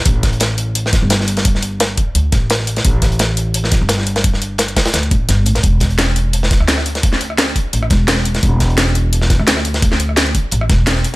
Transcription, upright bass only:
X:1
M:4/4
L:1/16
Q:1/4=172
K:Em
V:1 name="Upright bass" clef=bass
A,,,8- A,,,3 G,,,4- G,,,- | G,,,6 z2 D,,2 A,,,6 | A,,,8- A,,,3 G,,,4- G,,,- | G,,,6 z2 D,,2 A,,,2 G,,,2 A,,,2 |
E,,,8- E,,,3 D,,4- D,,- | D,,6 z2 A,,,2 E,,,6 | E,,,8- E,,,3 D,,4- D,,- | D,,6 z2 A,,,2 E,,,4 z2 |]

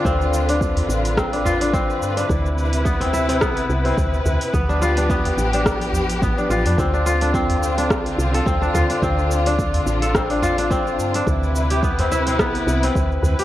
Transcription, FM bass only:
X:1
M:4/4
L:1/16
Q:"Swing 16ths" 1/4=107
K:Ddor
V:1 name="FM bass" clef=bass
D,,6 A,,,8 G,,2 | D,,8 C,,2 C,,2 D,,2 D,, z | D,,6 A,,,6 A,,, z A,,, F,, | D,,8 C,,2 C,,2 D,,2 D,, z |
D,,6 A,,,8 G,,2 | D,,8 C,,2 C,,2 D,,2 D,, z |]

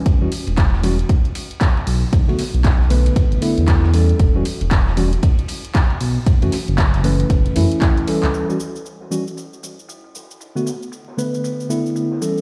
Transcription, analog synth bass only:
X:1
M:4/4
L:1/16
Q:"Swing 16ths" 1/4=116
K:Edor
V:1 name="Analog synth bass" clef=bass
E,,, E,,, z E,,,4 z6 z B,,, z | B,,, B,,, z B,,,4 z2 A,,, z E,,4 z | E,,, E,,, z E,,,4 z6 z B,,, z | F,,, F,,, z F,,,4 z F,,, z F,, z4 C,, |
z16 | z16 |]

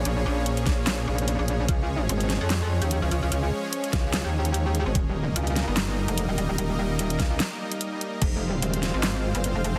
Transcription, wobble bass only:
X:1
M:4/4
L:1/16
Q:"Swing 16ths" 1/4=147
K:Dblyd
V:1 name="Wobble bass" clef=bass
B,,,2 B,,,4 B,,,4 B,,,3 B,,,3 | D,,4 A,,,3 F,,4 E,,2 D,, D,, D,, | D,,2 z4 D,,3 E,,6 A,,, | E,,,4 D,,3 G,,,4 F,,,2 E,,, E,,, E,,, |
E,,,2 E,,,4 D,,2 z8 | F,,,4 E,,,3 A,,,4 G,,,2 F,,, F,,, F,,, |]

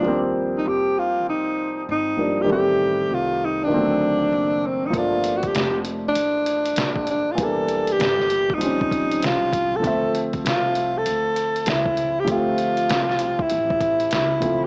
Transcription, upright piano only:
X:1
M:4/4
L:1/8
Q:"Swing 16ths" 1/4=98
K:Dm
V:1 name="Upright piano"
[F,G,B,C]6- [F,G,B,C] [F,G,B,D] | [_E,G,A,C]4 [E,F,^F,A,C]4 | [F,A,B,D]8 | [E,G,B,D]4 [F,G,C_D]4 |
[F,A,Ce]8 | [F,A,CG]6- [F,A,CG] [F,A,CF] |]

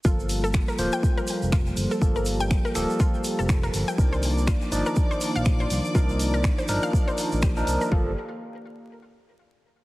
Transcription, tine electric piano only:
X:1
M:4/4
L:1/16
Q:"Swing 16ths" 1/4=122
K:Gm
V:1 name="Tine electric piano"
[F,B,A]6 [F,B,c]8- [F,B,c]2 | [F,B,A]6 [F,B,A]8- [F,B,A]2 | [F,DEB]6 [F,DEd]8- [F,DEd]2 | [F,DEB]6 [F,DEB]6- [F,DEB] [F,DEB]3 |
[F,B,A]2 z12 z2 |]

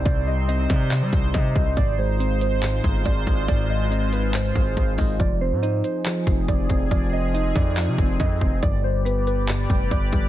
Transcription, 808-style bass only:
X:1
M:4/4
L:1/16
Q:1/4=140
K:Fdor
V:1 name="808-style bass" clef=bass
C,,6 C,3 G, C,,2 C,2 C,,2 | A,,,8- A,,,2 G,,,2 A,,,2 A,,,2 | A,,,8- A,,,2 A,,,2 A,,,2 A,,,2 | F,,,3 A,,3 z4 F,,,2 F,,,2 F,,,2 |
F,,,6 F,,3 C, F,,,2 F,,2 F,,,2 | G,,,8- G,,,2 F,,,2 G,,,2 G,,,2 |]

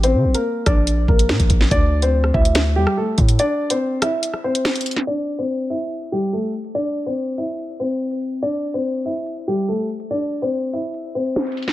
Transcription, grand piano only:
X:1
M:4/4
L:1/16
Q:1/4=143
K:Cmix
V:1 name="Grand piano"
[Cc]3 [B,B]3 [Dd]4 [B,B]6 | [Dd]3 [Cc]3 [Ee]4 [G,G]2 [A,A]2 z2 | [Dd]3 [Cc]3 [Ee]4 [Cc]6 | [Dd]3 [Cc]3 [Ee]4 [G,G]2 [A,A]2 z2 |
[Dd]3 [Cc]3 [Ee]4 [Cc]6 | [Dd]3 [Cc]3 [Ee]4 [G,G]2 [A,A]2 z2 | [Dd]3 [Cc]3 [Ee]4 [Cc]6 |]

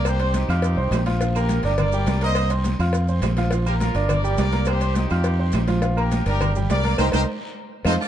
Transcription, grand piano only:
X:1
M:4/4
L:1/8
Q:1/4=208
K:Bb
V:1 name="Grand piano"
[B,Bb] [Ccc']2 [Fff']2 [Ccc']2 [F,Ff] | [F,Ff] [B,Bb]2 [Ddd']2 [G,Gg]2 [B,Bb]- | [B,Bb] [Ccc']2 [Fff']2 [Ccc']2 [F,Ff] | [F,Ff] [B,Bb]2 [Ddd']2 [G,Gg]2 [B,Bb]- |
[B,Bb] [Ccc']2 [Fff']2 [Ccc']2 [F,Ff] | [F,Ff] [B,Bb]2 [Ddd']2 [G,Gg]2 [B,Bb] | [Bce] [Bce] z4 [cef] z |]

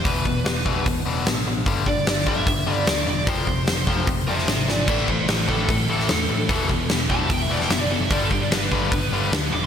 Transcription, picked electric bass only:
X:1
M:4/4
L:1/8
Q:1/4=149
K:Ephr
V:1 name="Picked electric bass" clef=bass
E,,, E,,, E,,, E,,, E,,, E,,, A,,,2 | G,,, G,,, G,,,2 G,,, G,,, D,, E,,, | F,,, F,,, F,,, F,,, F,,, F,,, ^G,,,2 | A,,, A,,, A,,,2 A,,, A,,, E,, A,, |
E,,, E,,, E,,, E,,, E,,, E,,, ^F,,,2 | G,,, G,,, G,,,2 G,,, G,,, D,, E,,, |]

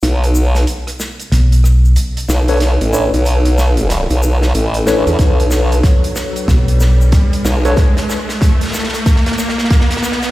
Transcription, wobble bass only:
X:1
M:4/4
L:1/16
Q:"Swing 16ths" 1/4=93
K:Bm
V:1 name="Wobble bass" clef=bass
B,,,4 z8 z2 B,,,2- | B,,, A,,,2 B,,,6 B,,,3 A,,,3 E,, | B,,,4 z8 z2 B,,,2 | z16 |]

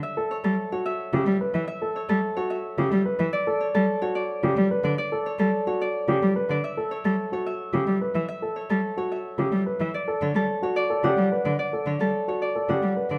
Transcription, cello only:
X:1
M:3/4
L:1/16
Q:1/4=109
K:Amix
V:1 name="Cello" clef=bass
z3 G, z4 C, G, z E, | z3 G, z4 C, G, z E, | z3 G, z4 C, G, z D, | z3 G, z4 C, G, z D, |
z3 G, z4 C, G, z E, | z3 G, z4 C, G, z E, | z2 D, G, z4 C, G, z D, | z2 D, G, z4 C, G, z D, |]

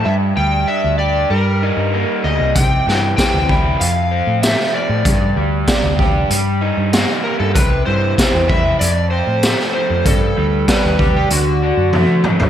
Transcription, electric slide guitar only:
X:1
M:4/4
L:1/16
Q:1/4=96
K:Clyd
V:1 name="Electric slide guitar"
e2 g2 e2 d2 _B6 _e2 | g4 g4 =f4 e2 d2- | d6 z8 _B A | B2 c4 e2 d2 c4 c2 |
A4 B3 G F6 z2 |]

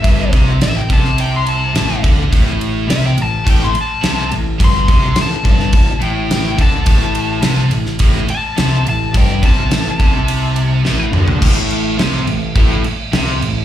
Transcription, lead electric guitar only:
X:1
M:4/4
L:1/16
Q:1/4=106
K:Am
V:1 name="Lead electric guitar"
e2 z2 e g a2 g c' a4 z2 | z4 e g a2 g c' a4 z2 | c'4 a6 g4 a2- | a6 z4 a4 a2 |
g2 a12 z2 | z16 |]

